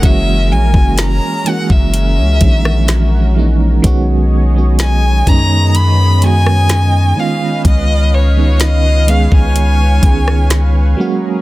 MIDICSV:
0, 0, Header, 1, 6, 480
1, 0, Start_track
1, 0, Tempo, 952381
1, 15, Time_signature, 4, 2, 24, 8
1, 5754, End_track
2, 0, Start_track
2, 0, Title_t, "Violin"
2, 0, Program_c, 0, 40
2, 20, Note_on_c, 0, 76, 103
2, 261, Note_on_c, 0, 80, 88
2, 269, Note_off_c, 0, 76, 0
2, 502, Note_on_c, 0, 82, 98
2, 510, Note_off_c, 0, 80, 0
2, 747, Note_on_c, 0, 78, 92
2, 755, Note_off_c, 0, 82, 0
2, 863, Note_on_c, 0, 76, 85
2, 871, Note_off_c, 0, 78, 0
2, 1699, Note_off_c, 0, 76, 0
2, 2423, Note_on_c, 0, 80, 107
2, 2663, Note_on_c, 0, 82, 112
2, 2671, Note_off_c, 0, 80, 0
2, 2903, Note_on_c, 0, 83, 108
2, 2910, Note_off_c, 0, 82, 0
2, 3143, Note_on_c, 0, 80, 118
2, 3150, Note_off_c, 0, 83, 0
2, 3623, Note_on_c, 0, 77, 100
2, 3631, Note_off_c, 0, 80, 0
2, 3859, Note_off_c, 0, 77, 0
2, 3863, Note_on_c, 0, 75, 102
2, 4103, Note_on_c, 0, 73, 86
2, 4111, Note_off_c, 0, 75, 0
2, 4340, Note_on_c, 0, 75, 97
2, 4347, Note_off_c, 0, 73, 0
2, 4582, Note_on_c, 0, 77, 94
2, 4589, Note_off_c, 0, 75, 0
2, 4702, Note_on_c, 0, 80, 92
2, 4709, Note_off_c, 0, 77, 0
2, 5539, Note_off_c, 0, 80, 0
2, 5754, End_track
3, 0, Start_track
3, 0, Title_t, "Analog synth pad"
3, 0, Program_c, 1, 89
3, 0, Note_on_c, 1, 56, 85
3, 0, Note_on_c, 1, 68, 71
3, 0, Note_on_c, 1, 70, 88
3, 15, Note_on_c, 1, 61, 75
3, 956, Note_off_c, 1, 68, 0
3, 975, Note_on_c, 1, 66, 74
3, 1915, Note_off_c, 1, 70, 0
3, 1916, Note_off_c, 1, 56, 0
3, 1916, Note_off_c, 1, 61, 0
3, 1926, Note_off_c, 1, 66, 0
3, 1938, Note_on_c, 1, 73, 78
3, 1938, Note_on_c, 1, 75, 98
3, 1939, Note_on_c, 1, 59, 89
3, 1940, Note_on_c, 1, 68, 82
3, 3600, Note_off_c, 1, 59, 0
3, 3600, Note_off_c, 1, 73, 0
3, 3601, Note_off_c, 1, 68, 0
3, 3617, Note_on_c, 1, 77, 86
3, 3618, Note_on_c, 1, 61, 77
3, 3618, Note_on_c, 1, 71, 74
3, 4557, Note_off_c, 1, 75, 0
3, 4574, Note_on_c, 1, 73, 92
3, 5517, Note_off_c, 1, 71, 0
3, 5517, Note_off_c, 1, 77, 0
3, 5518, Note_off_c, 1, 61, 0
3, 5525, Note_off_c, 1, 73, 0
3, 5530, Note_on_c, 1, 56, 78
3, 5530, Note_on_c, 1, 68, 72
3, 5531, Note_on_c, 1, 61, 76
3, 5531, Note_on_c, 1, 70, 86
3, 5754, Note_off_c, 1, 56, 0
3, 5754, Note_off_c, 1, 61, 0
3, 5754, Note_off_c, 1, 68, 0
3, 5754, Note_off_c, 1, 70, 0
3, 5754, End_track
4, 0, Start_track
4, 0, Title_t, "FM electric piano"
4, 0, Program_c, 2, 5
4, 0, Control_c, 2, 64, 127
4, 8, Note_on_c, 2, 52, 97
4, 12, Note_on_c, 2, 56, 90
4, 19, Note_on_c, 2, 58, 86
4, 21, Control_c, 2, 64, 0
4, 24, Note_on_c, 2, 61, 90
4, 30, Note_on_c, 2, 66, 108
4, 119, Control_c, 2, 64, 127
4, 245, Note_off_c, 2, 52, 0
4, 247, Note_off_c, 2, 56, 0
4, 251, Note_off_c, 2, 58, 0
4, 253, Note_off_c, 2, 61, 0
4, 256, Note_off_c, 2, 66, 0
4, 367, Note_on_c, 2, 52, 64
4, 373, Note_on_c, 2, 56, 62
4, 378, Note_on_c, 2, 58, 63
4, 384, Note_on_c, 2, 61, 62
4, 389, Note_on_c, 2, 66, 73
4, 605, Note_off_c, 2, 52, 0
4, 608, Note_off_c, 2, 56, 0
4, 610, Note_off_c, 2, 58, 0
4, 613, Note_off_c, 2, 61, 0
4, 616, Note_off_c, 2, 66, 0
4, 728, Note_on_c, 2, 52, 78
4, 733, Note_on_c, 2, 56, 71
4, 739, Note_on_c, 2, 58, 68
4, 744, Note_on_c, 2, 61, 71
4, 750, Note_on_c, 2, 66, 79
4, 1043, Note_off_c, 2, 52, 0
4, 1046, Note_off_c, 2, 56, 0
4, 1049, Note_off_c, 2, 58, 0
4, 1051, Note_off_c, 2, 61, 0
4, 1054, Note_off_c, 2, 66, 0
4, 1210, Note_on_c, 2, 52, 72
4, 1214, Note_on_c, 2, 56, 67
4, 1220, Note_on_c, 2, 58, 67
4, 1226, Note_on_c, 2, 61, 67
4, 1230, Note_on_c, 2, 51, 85
4, 1524, Note_off_c, 2, 52, 0
4, 1526, Note_off_c, 2, 56, 0
4, 1529, Note_off_c, 2, 58, 0
4, 1532, Note_off_c, 2, 61, 0
4, 1534, Note_off_c, 2, 51, 0
4, 1688, Note_on_c, 2, 52, 81
4, 1693, Note_on_c, 2, 56, 74
4, 1699, Note_on_c, 2, 58, 74
4, 1704, Note_on_c, 2, 61, 76
4, 1709, Note_on_c, 2, 63, 86
4, 1847, Note_off_c, 2, 52, 0
4, 1850, Note_off_c, 2, 56, 0
4, 1853, Note_off_c, 2, 58, 0
4, 1855, Note_off_c, 2, 61, 0
4, 1858, Note_off_c, 2, 63, 0
4, 1926, Note_on_c, 2, 51, 113
4, 1931, Note_on_c, 2, 56, 108
4, 1937, Note_on_c, 2, 59, 108
4, 1941, Control_c, 2, 64, 0
4, 1943, Note_on_c, 2, 61, 104
4, 1948, Note_on_c, 2, 66, 127
4, 2038, Control_c, 2, 64, 127
4, 2164, Note_off_c, 2, 51, 0
4, 2167, Note_off_c, 2, 56, 0
4, 2170, Note_off_c, 2, 59, 0
4, 2173, Note_off_c, 2, 61, 0
4, 2175, Note_off_c, 2, 66, 0
4, 2289, Note_on_c, 2, 51, 67
4, 2293, Note_on_c, 2, 56, 61
4, 2299, Note_on_c, 2, 59, 64
4, 2305, Note_on_c, 2, 61, 61
4, 2310, Note_on_c, 2, 66, 71
4, 2526, Note_off_c, 2, 51, 0
4, 2528, Note_off_c, 2, 56, 0
4, 2531, Note_off_c, 2, 59, 0
4, 2534, Note_off_c, 2, 61, 0
4, 2536, Note_off_c, 2, 66, 0
4, 2649, Note_on_c, 2, 51, 73
4, 2655, Note_on_c, 2, 56, 70
4, 2661, Note_on_c, 2, 59, 66
4, 2666, Note_on_c, 2, 61, 70
4, 2672, Note_on_c, 2, 63, 86
4, 2963, Note_off_c, 2, 51, 0
4, 2966, Note_off_c, 2, 56, 0
4, 2969, Note_off_c, 2, 59, 0
4, 2972, Note_off_c, 2, 61, 0
4, 2975, Note_off_c, 2, 63, 0
4, 3130, Note_on_c, 2, 51, 74
4, 3136, Note_on_c, 2, 56, 68
4, 3141, Note_on_c, 2, 59, 68
4, 3146, Note_on_c, 2, 61, 69
4, 3151, Note_on_c, 2, 66, 81
4, 3600, Note_off_c, 2, 51, 0
4, 3603, Note_off_c, 2, 56, 0
4, 3605, Note_off_c, 2, 59, 0
4, 3608, Note_off_c, 2, 61, 0
4, 3608, Note_on_c, 2, 51, 80
4, 3610, Note_off_c, 2, 66, 0
4, 3615, Note_on_c, 2, 56, 74
4, 3621, Note_on_c, 2, 59, 71
4, 3622, Control_c, 2, 64, 0
4, 3625, Note_on_c, 2, 61, 73
4, 3630, Note_on_c, 2, 65, 88
4, 3716, Control_c, 2, 64, 127
4, 4092, Note_off_c, 2, 51, 0
4, 4095, Note_off_c, 2, 56, 0
4, 4098, Note_off_c, 2, 59, 0
4, 4100, Note_off_c, 2, 61, 0
4, 4103, Note_off_c, 2, 65, 0
4, 4210, Note_on_c, 2, 51, 66
4, 4215, Note_on_c, 2, 56, 61
4, 4220, Note_on_c, 2, 59, 61
4, 4225, Note_on_c, 2, 61, 61
4, 4230, Note_on_c, 2, 63, 77
4, 4446, Note_off_c, 2, 51, 0
4, 4449, Note_off_c, 2, 56, 0
4, 4451, Note_off_c, 2, 59, 0
4, 4454, Note_off_c, 2, 61, 0
4, 4456, Note_off_c, 2, 63, 0
4, 4570, Note_on_c, 2, 51, 74
4, 4576, Note_on_c, 2, 56, 71
4, 4581, Note_on_c, 2, 59, 69
4, 4586, Note_on_c, 2, 61, 69
4, 4591, Note_on_c, 2, 68, 80
4, 4884, Note_off_c, 2, 51, 0
4, 4887, Note_off_c, 2, 56, 0
4, 4890, Note_off_c, 2, 59, 0
4, 4892, Note_off_c, 2, 61, 0
4, 4895, Note_off_c, 2, 68, 0
4, 5048, Note_on_c, 2, 51, 72
4, 5055, Note_on_c, 2, 56, 68
4, 5061, Note_on_c, 2, 59, 65
4, 5066, Note_on_c, 2, 61, 69
4, 5070, Note_on_c, 2, 68, 86
4, 5363, Note_off_c, 2, 51, 0
4, 5367, Note_off_c, 2, 56, 0
4, 5369, Note_off_c, 2, 59, 0
4, 5372, Note_off_c, 2, 61, 0
4, 5374, Note_off_c, 2, 68, 0
4, 5528, Note_on_c, 2, 54, 98
4, 5533, Note_on_c, 2, 56, 88
4, 5538, Note_on_c, 2, 58, 89
4, 5542, Control_c, 2, 64, 0
4, 5544, Note_on_c, 2, 61, 87
4, 5548, Note_on_c, 2, 66, 107
4, 5637, Control_c, 2, 64, 127
4, 5754, Note_off_c, 2, 54, 0
4, 5754, Note_off_c, 2, 56, 0
4, 5754, Note_off_c, 2, 58, 0
4, 5754, Note_off_c, 2, 61, 0
4, 5754, Note_off_c, 2, 66, 0
4, 5754, End_track
5, 0, Start_track
5, 0, Title_t, "808-style bass"
5, 0, Program_c, 3, 38
5, 17, Note_on_c, 3, 30, 108
5, 257, Note_on_c, 3, 34, 104
5, 264, Note_off_c, 3, 30, 0
5, 370, Note_off_c, 3, 34, 0
5, 374, Note_on_c, 3, 30, 106
5, 605, Note_off_c, 3, 30, 0
5, 858, Note_on_c, 3, 30, 102
5, 1098, Note_on_c, 3, 37, 93
5, 1106, Note_off_c, 3, 30, 0
5, 1211, Note_off_c, 3, 37, 0
5, 1216, Note_on_c, 3, 34, 99
5, 1916, Note_off_c, 3, 34, 0
5, 1937, Note_on_c, 3, 35, 113
5, 2636, Note_off_c, 3, 35, 0
5, 2656, Note_on_c, 3, 42, 99
5, 3596, Note_off_c, 3, 42, 0
5, 3856, Note_on_c, 3, 37, 113
5, 4676, Note_off_c, 3, 37, 0
5, 4696, Note_on_c, 3, 37, 99
5, 5042, Note_off_c, 3, 37, 0
5, 5055, Note_on_c, 3, 37, 100
5, 5516, Note_off_c, 3, 37, 0
5, 5754, End_track
6, 0, Start_track
6, 0, Title_t, "Drums"
6, 15, Note_on_c, 9, 36, 109
6, 16, Note_on_c, 9, 42, 76
6, 66, Note_off_c, 9, 36, 0
6, 67, Note_off_c, 9, 42, 0
6, 372, Note_on_c, 9, 36, 100
6, 423, Note_off_c, 9, 36, 0
6, 492, Note_on_c, 9, 42, 70
6, 497, Note_on_c, 9, 38, 118
6, 542, Note_off_c, 9, 42, 0
6, 547, Note_off_c, 9, 38, 0
6, 736, Note_on_c, 9, 42, 69
6, 786, Note_off_c, 9, 42, 0
6, 857, Note_on_c, 9, 36, 95
6, 907, Note_off_c, 9, 36, 0
6, 976, Note_on_c, 9, 42, 72
6, 1026, Note_off_c, 9, 42, 0
6, 1213, Note_on_c, 9, 42, 62
6, 1215, Note_on_c, 9, 36, 88
6, 1263, Note_off_c, 9, 42, 0
6, 1265, Note_off_c, 9, 36, 0
6, 1337, Note_on_c, 9, 37, 97
6, 1388, Note_off_c, 9, 37, 0
6, 1453, Note_on_c, 9, 42, 70
6, 1455, Note_on_c, 9, 38, 107
6, 1503, Note_off_c, 9, 42, 0
6, 1505, Note_off_c, 9, 38, 0
6, 1935, Note_on_c, 9, 36, 108
6, 1935, Note_on_c, 9, 42, 77
6, 1985, Note_off_c, 9, 36, 0
6, 1986, Note_off_c, 9, 42, 0
6, 2413, Note_on_c, 9, 42, 72
6, 2418, Note_on_c, 9, 38, 117
6, 2463, Note_off_c, 9, 42, 0
6, 2468, Note_off_c, 9, 38, 0
6, 2655, Note_on_c, 9, 36, 90
6, 2656, Note_on_c, 9, 42, 72
6, 2706, Note_off_c, 9, 36, 0
6, 2707, Note_off_c, 9, 42, 0
6, 2896, Note_on_c, 9, 42, 75
6, 2947, Note_off_c, 9, 42, 0
6, 3135, Note_on_c, 9, 42, 64
6, 3185, Note_off_c, 9, 42, 0
6, 3258, Note_on_c, 9, 37, 98
6, 3309, Note_off_c, 9, 37, 0
6, 3374, Note_on_c, 9, 42, 71
6, 3376, Note_on_c, 9, 38, 105
6, 3424, Note_off_c, 9, 42, 0
6, 3426, Note_off_c, 9, 38, 0
6, 3855, Note_on_c, 9, 36, 109
6, 3856, Note_on_c, 9, 42, 75
6, 3905, Note_off_c, 9, 36, 0
6, 3906, Note_off_c, 9, 42, 0
6, 4333, Note_on_c, 9, 42, 74
6, 4338, Note_on_c, 9, 38, 127
6, 4383, Note_off_c, 9, 42, 0
6, 4388, Note_off_c, 9, 38, 0
6, 4577, Note_on_c, 9, 42, 69
6, 4627, Note_off_c, 9, 42, 0
6, 4696, Note_on_c, 9, 36, 87
6, 4746, Note_off_c, 9, 36, 0
6, 4816, Note_on_c, 9, 42, 71
6, 4867, Note_off_c, 9, 42, 0
6, 5054, Note_on_c, 9, 36, 92
6, 5054, Note_on_c, 9, 42, 62
6, 5104, Note_off_c, 9, 36, 0
6, 5105, Note_off_c, 9, 42, 0
6, 5179, Note_on_c, 9, 37, 93
6, 5230, Note_off_c, 9, 37, 0
6, 5294, Note_on_c, 9, 42, 73
6, 5296, Note_on_c, 9, 38, 108
6, 5344, Note_off_c, 9, 42, 0
6, 5346, Note_off_c, 9, 38, 0
6, 5754, End_track
0, 0, End_of_file